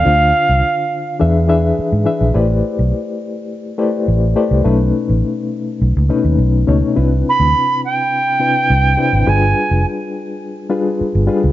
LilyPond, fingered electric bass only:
\new Staff \with { instrumentName = "Fingered electric bass" } { \clef bass \time 4/4 \key c \major \tempo 4 = 104 d,8 r16 c,16 r4 e,4 r16 gis,16 r16 bes,,16 | a,,8 r16 b,,16 r2 a,,8 r16 c,16 | b,,8 r16 a,,16 r4 b,,16 des,16 r16 dis,16 b,,8 des,16 r16 | c,8 r16 d,16 r2 c,8 r16 aes,,16 |
g,,8 r16 f,,16 r2 r16 g,,16 r16 des,16 | }